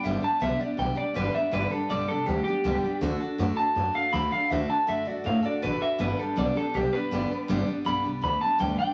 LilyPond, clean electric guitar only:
\new Staff \with { instrumentName = "Clean electric guitar" } { \time 4/4 \key g \major \tempo 4 = 161 e''8 a''8 e''8 d''8 g''8 d''8 b'8 e''8 | b'8 a'8 d''8 a'8 g'8 g'4. | r4. a''4 f''8 b''8 f''8 | e''8 a''8 e''8 d''8 f''8 d''8 b'8 e''8 |
b'8 a'8 d''8 a'8 g'8 b'4. | r4 b''8 r8 b''8 a''8 g''8 g''8 | }